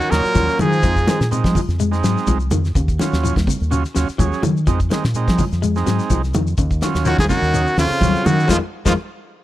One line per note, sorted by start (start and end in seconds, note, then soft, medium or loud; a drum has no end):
0.00 0.13 F#2 medium
0.00 0.13 D#3 medium
0.00 0.12 F#4 loud
0.00 closed hi-hat soft
0.00 shekere soft
0.11 0.24 D#2 loud
0.11 0.58 A#2 medium
0.11 0.26 C#3 medium
0.11 0.24 F#3 medium
0.11 0.59 F#3 medium
0.11 0.24 C#4 medium
0.11 0.24 D#4 medium
0.11 0.59 A#4 loud
0.11 snare medium
0.11 closed hi-hat medium
0.11 shekere medium
0.25 snare soft
0.25 closed hi-hat soft
0.25 shekere soft
0.35 0.47 D#2 loud
0.35 0.50 F3 medium
0.35 0.59 F#3 medium
0.35 0.59 C#4 medium
0.35 0.59 F4 medium
0.35 kick medium
0.35 closed hi-hat medium
0.35 high conga medium
0.35 shekere loud
0.49 snare soft
0.49 closed hi-hat soft
0.49 shekere soft
0.59 1.27 G#2 medium
0.59 0.82 D#3 medium
0.59 1.29 F3 medium
0.59 0.74 F#3 medium
0.59 1.28 G#4 loud
0.59 closed hi-hat medium
0.59 high conga loud
0.59 low conga loud
0.59 shekere medium
0.73 shekere soft
0.82 1.06 F2 loud
0.82 0.98 F3 medium
0.82 0.95 G#3 medium
0.82 0.96 C4 medium
0.82 0.96 D#4 medium
0.82 kick loud
0.82 closed hi-hat medium
0.82 high conga soft
0.82 shekere medium
0.96 kick medium
0.96 closed hi-hat soft
0.96 shekere soft
1.06 1.22 D#3 medium
1.06 1.19 G#3 medium
1.06 1.20 C4 medium
1.06 1.20 D#4 medium
1.06 snare medium
1.06 closed hi-hat medium
1.06 high conga loud
1.06 shekere medium
1.20 1.43 A#2 medium
1.20 snare medium
1.20 closed hi-hat soft
1.20 shekere soft
1.31 1.47 C3 medium
1.31 1.61 G#3 medium
1.31 1.61 C4 medium
1.31 1.61 D#4 loud
1.31 closed hi-hat medium
1.31 high conga soft
1.31 shekere loud
1.44 1.55 F3 medium
1.44 kick medium
1.44 snare medium
1.44 high conga medium
1.44 shekere soft
1.55 1.71 F3 medium
1.55 kick medium
1.55 open hi-hat medium
1.55 low conga medium
1.55 shekere medium
1.68 2.01 F2 medium
1.68 snare soft
1.68 closed hi-hat soft
1.68 shekere soft
1.79 1.94 G#3 loud
1.79 closed hi-hat medium
1.79 high conga soft
1.79 shekere medium
1.91 2.38 G#3 loud
1.91 2.38 C4 medium
1.91 2.38 D#4 loud
1.91 snare soft
1.91 closed hi-hat soft
1.91 shekere soft
2.03 2.16 G#2 medium
2.03 2.19 F#3 medium
2.03 snare medium
2.03 closed hi-hat medium
2.03 shekere medium
2.17 snare soft
2.17 shekere soft
2.27 2.50 C2 loud
2.27 2.43 F3 medium
2.27 kick medium
2.27 closed hi-hat medium
2.27 high conga loud
2.27 shekere medium
2.40 closed hi-hat soft
2.40 shekere soft
2.51 2.74 F2 medium
2.51 2.67 D#3 medium
2.51 closed hi-hat medium
2.51 high conga loud
2.51 low conga medium
2.51 shekere medium
2.65 snare soft
2.65 shekere soft
2.75 2.98 D#2 loud
2.75 2.91 C#3 medium
2.75 kick medium
2.75 closed hi-hat medium
2.75 high conga soft
2.75 shekere medium
2.88 kick medium
2.88 closed hi-hat soft
2.88 shekere soft
2.99 3.14 D#3 medium
2.99 3.35 F#3 medium
2.99 3.36 C#4 medium
2.99 3.36 F4 loud
2.99 snare medium
2.99 closed hi-hat medium
2.99 high conga medium
2.99 shekere medium
3.13 3.35 D#2 medium
3.13 snare medium
3.13 closed hi-hat soft
3.13 shekere soft
3.23 3.38 F3 medium
3.23 closed hi-hat medium
3.23 shekere medium
3.36 3.46 D#2 loud
3.36 kick medium
3.36 snare medium
3.36 closed hi-hat soft
3.36 high conga medium
3.36 shekere soft
3.47 3.62 C3 medium
3.47 kick medium
3.47 open hi-hat medium
3.47 low conga medium
3.47 shekere medium
3.60 3.83 D#2 medium
3.60 closed hi-hat soft
3.60 shekere soft
3.71 3.86 C#3 medium
3.71 3.83 F#3 loud
3.71 3.84 C#4 medium
3.71 3.84 F4 loud
3.71 closed hi-hat medium
3.71 high conga soft
3.71 shekere medium
3.84 snare soft
3.84 closed hi-hat soft
3.84 shekere soft
3.95 4.08 D#2 loud
3.95 4.09 C#3 medium
3.95 4.08 F#3 loud
3.95 4.08 C#4 medium
3.95 4.08 F4 loud
3.95 snare medium
3.95 closed hi-hat medium
3.95 shekere medium
4.08 muted fingered electric bass stroke soft
4.08 snare soft
4.08 closed hi-hat soft
4.08 shekere soft
4.18 4.31 D#2 loud
4.18 4.33 F3 medium
4.18 4.42 F#3 medium
4.18 4.42 C#4 medium
4.18 4.43 G#4 loud
4.18 kick medium
4.18 closed hi-hat medium
4.18 high conga loud
4.18 shekere loud
4.32 snare soft
4.32 closed hi-hat soft
4.32 shekere soft
4.42 4.65 D#3 medium
4.42 4.57 F#3 medium
4.42 closed hi-hat medium
4.42 high conga loud
4.42 low conga medium
4.42 shekere medium
4.57 shekere soft
4.67 4.89 F2 loud
4.67 4.82 F3 loud
4.67 4.80 G#3 loud
4.67 4.80 C4 medium
4.67 4.80 D#4 loud
4.67 kick medium
4.67 closed hi-hat medium
4.67 high conga soft
4.67 low conga medium
4.67 shekere medium
4.80 kick medium
4.80 closed hi-hat soft
4.80 shekere soft
4.90 5.05 D#3 medium
4.90 5.04 G#3 medium
4.90 5.04 C4 medium
4.90 5.04 D#4 loud
4.90 snare medium
4.90 closed hi-hat medium
4.90 high conga loud
4.90 shekere medium
5.04 5.26 A#2 medium
5.04 snare medium
5.04 closed hi-hat soft
5.04 shekere soft
5.14 5.44 G#3 medium
5.14 5.45 C4 medium
5.14 5.45 D#4 loud
5.14 closed hi-hat medium
5.14 high conga soft
5.14 shekere medium
5.28 5.38 F3 medium
5.28 kick medium
5.28 snare medium
5.28 high conga medium
5.28 shekere soft
5.38 5.53 F3 medium
5.38 kick medium
5.38 open hi-hat medium
5.38 high conga medium
5.38 low conga medium
5.38 shekere medium
5.52 5.84 F2 medium
5.52 snare soft
5.52 closed hi-hat soft
5.52 shekere soft
5.62 5.77 G#3 medium
5.62 closed hi-hat medium
5.62 high conga soft
5.62 shekere medium
5.76 6.22 G#3 loud
5.76 6.22 C4 medium
5.76 6.22 D#4 loud
5.76 snare soft
5.76 closed hi-hat soft
5.76 shekere soft
5.86 5.99 G#2 medium
5.86 6.01 F#3 medium
5.86 snare medium
5.86 closed hi-hat medium
5.86 shekere medium
5.99 snare soft
5.99 shekere soft
6.10 6.32 C2 loud
6.10 6.25 F3 medium
6.10 kick medium
6.10 closed hi-hat medium
6.10 high conga medium
6.10 shekere loud
6.23 snare soft
6.23 closed hi-hat soft
6.23 shekere soft
6.34 6.57 F2 medium
6.34 6.49 D#3 medium
6.34 closed hi-hat medium
6.34 high conga loud
6.34 low conga medium
6.34 shekere medium
6.47 shekere soft
6.57 6.80 D#2 loud
6.57 6.73 C#3 loud
6.57 kick medium
6.57 closed hi-hat medium
6.57 shekere medium
6.70 kick medium
6.70 closed hi-hat soft
6.70 shekere soft
6.81 6.97 D#3 medium
6.81 7.18 F#3 medium
6.81 7.18 C#4 medium
6.81 7.18 F4 loud
6.81 snare medium
6.81 closed hi-hat medium
6.81 high conga medium
6.81 shekere medium
6.94 7.17 D#2 medium
6.94 snare medium
6.94 closed hi-hat soft
6.94 shekere soft
7.05 7.17 F#2 medium
7.05 7.18 D#3 medium
7.05 7.21 F3 medium
7.05 7.18 F#4 loud
7.05 snare soft
7.05 closed hi-hat medium
7.05 high conga soft
7.05 shekere medium
7.18 7.29 D#2 loud
7.18 7.23 G#2 medium
7.18 7.26 F3 medium
7.18 7.24 G#4 loud
7.18 kick medium
7.18 snare medium
7.18 closed hi-hat soft
7.18 high conga medium
7.18 shekere soft
7.29 7.74 F#2 medium
7.29 7.45 C3 medium
7.29 7.75 D#3 medium
7.29 7.74 F#4 loud
7.29 kick medium
7.29 snare soft
7.29 open hi-hat medium
7.29 high conga medium
7.29 low conga medium
7.29 shekere medium
7.42 7.65 D#2 medium
7.42 closed hi-hat soft
7.42 shekere soft
7.53 7.69 C#3 medium
7.53 7.66 F#3 medium
7.53 7.67 C#4 medium
7.53 7.67 D#4 medium
7.53 snare soft
7.53 closed hi-hat medium
7.53 high conga soft
7.53 shekere medium
7.66 closed hi-hat soft
7.66 shekere soft
7.77 7.89 D#2 loud
7.77 8.25 F2 medium
7.77 7.93 C#3 medium
7.77 7.91 F#3 medium
7.77 7.91 C#4 medium
7.77 8.27 F4 loud
7.77 7.91 F4 loud
7.77 snare medium
7.77 closed hi-hat medium
7.77 shekere medium
7.82 8.29 C#3 medium
7.90 muted fingered electric bass stroke soft
7.90 snare soft
7.90 closed hi-hat soft
7.90 shekere soft
8.01 8.13 D#2 loud
8.01 8.16 F#3 loud
8.01 8.25 F#3 medium
8.01 8.25 C#4 medium
8.01 8.26 F4 medium
8.01 kick medium
8.01 closed hi-hat medium
8.01 high conga loud
8.01 shekere loud
8.14 snare soft
8.14 closed hi-hat soft
8.14 shekere soft
8.24 8.46 F#2 medium
8.24 8.48 D#3 loud
8.24 8.50 D#3 medium
8.24 8.40 F#3 medium
8.24 8.49 F#4 loud
8.24 closed hi-hat medium
8.24 high conga loud
8.24 low conga medium
8.24 shekere medium
8.40 shekere soft
8.47 8.54 F2 loud
8.47 8.59 F2 loud
8.47 8.57 D#3 loud
8.47 8.57 F3 loud
8.47 8.58 G#3 medium
8.47 8.58 D#4 loud
8.47 8.56 F4 loud
8.47 kick medium
8.47 snare medium
8.47 high conga loud
8.47 shekere medium
8.51 8.58 F3 loud
8.51 8.59 C4 medium
8.51 8.59 F4 loud
8.85 8.91 F2 medium
8.85 8.94 F2 loud
8.85 8.93 D#3 loud
8.85 8.93 F3 loud
8.85 8.93 G#3 loud
8.85 8.94 C4 loud
8.85 8.93 D#4 loud
8.85 8.93 F4 medium
8.85 8.94 F4 loud
8.85 kick medium
8.85 snare medium
8.85 high conga loud
8.85 shekere loud